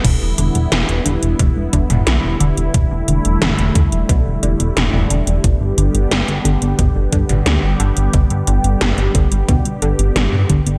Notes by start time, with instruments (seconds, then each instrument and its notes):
0.04 analog synth bass E1, synth arpeggio sound B2, analog synth pad D3 G3 B3 E4, kick, closed hi-hat, crash
0.22 analog synth bass E1
0.38 analog synth bass E1, synth arpeggio sound D3, closed hi-hat
0.55 analog synth bass E1, closed hi-hat
0.72 analog synth bass E1, synth arpeggio sound E3, snare, closed hi-hat
0.89 analog synth bass E1, closed hi-hat
1.06 analog synth bass E1, synth arpeggio sound D3, closed hi-hat
1.23 analog synth bass E1, closed hi-hat
1.39 analog synth bass E1, synth arpeggio sound B2, kick, closed hi-hat
1.57 analog synth bass E1
1.73 analog synth bass E1, synth arpeggio sound D3, kick, closed hi-hat
1.90 analog synth bass E1, closed hi-hat, mid tom
2.07 analog synth bass B1, synth arpeggio sound E3, snare, closed hi-hat
2.24 analog synth bass E1
2.40 analog synth bass E1, synth arpeggio sound D3, closed hi-hat
2.57 analog synth bass E1, closed hi-hat
2.74 analog synth bass E1, synth arpeggio sound B2, analog synth pad A3, kick, closed hi-hat
2.91 analog synth bass E1
3.08 analog synth bass E1, synth arpeggio sound D3, closed hi-hat
3.25 analog synth bass E1, closed hi-hat
3.42 analog synth bass E1, synth arpeggio sound E3, snare, closed hi-hat, mid tom
3.59 analog synth bass E1, closed hi-hat
3.75 analog synth bass E1, synth arpeggio sound D3, kick, closed hi-hat
3.92 analog synth bass E1, closed hi-hat
4.09 analog synth bass B1, synth arpeggio sound B2, kick, closed hi-hat
4.26 analog synth bass E1
4.43 analog synth bass E1, synth arpeggio sound D3, closed hi-hat
4.60 analog synth bass E1, closed hi-hat
4.77 analog synth bass E1, synth arpeggio sound E3, snare, closed hi-hat, mid tom
4.94 analog synth bass E1, mid tom
5.10 analog synth bass E1, synth arpeggio sound D3, closed hi-hat
5.27 analog synth bass E1, closed hi-hat
5.44 analog synth bass G1, synth arpeggio sound B2, analog synth pad B3 G4, kick, closed hi-hat
5.61 analog synth bass G1
5.78 analog synth bass G1, synth arpeggio sound D3, closed hi-hat
5.95 analog synth bass G1, closed hi-hat
6.11 analog synth bass G1, synth arpeggio sound G3, snare, closed hi-hat
6.28 analog synth bass G1, closed hi-hat
6.45 analog synth bass G1, synth arpeggio sound D3, closed hi-hat
6.62 analog synth bass G1, closed hi-hat
6.79 analog synth bass G1, synth arpeggio sound B2, kick, closed hi-hat
6.96 analog synth bass G1
7.12 analog synth bass G1, synth arpeggio sound D3, kick, closed hi-hat
7.29 analog synth bass G1, closed hi-hat, mid tom
7.46 analog synth bass D2, synth arpeggio sound G3, snare, closed hi-hat
7.63 analog synth bass G1
7.80 analog synth bass G1, synth arpeggio sound D3, closed hi-hat
7.97 analog synth bass G1, closed hi-hat
8.13 analog synth bass G1, synth arpeggio sound B2, kick, closed hi-hat
8.30 analog synth bass G1, closed hi-hat
8.47 analog synth bass G1, synth arpeggio sound D3, closed hi-hat
8.64 analog synth bass G1, closed hi-hat
8.81 analog synth bass G1, synth arpeggio sound G3, snare, closed hi-hat, mid tom
8.98 analog synth bass G1, closed hi-hat
9.15 analog synth bass G1, synth arpeggio sound D3, kick, closed hi-hat
9.32 analog synth bass G1, closed hi-hat
9.49 analog synth bass D2, synth arpeggio sound B2, kick, closed hi-hat
9.65 analog synth bass G1, closed hi-hat
9.82 analog synth bass G1, synth arpeggio sound D3, closed hi-hat
9.99 analog synth bass G1, closed hi-hat
10.16 analog synth bass G1, synth arpeggio sound G3, snare, closed hi-hat, mid tom
10.33 analog synth bass G2, mid tom
10.50 analog synth bass G1, synth arpeggio sound D3, kick, closed hi-hat
10.67 analog synth bass G1, closed hi-hat